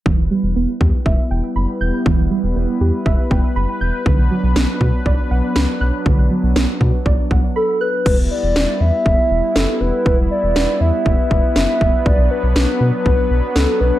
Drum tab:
CC |--------|--------|--------|--------|
SD |--------|--------|--o---o-|--o-----|
BD |o--oo---|o---oo--|o--oo---|o--ooo--|

CC |x-------|--------|--------|
SD |--o---o-|--o---o-|--o---o-|
BD |o---o---|o---oo-o|o---o---|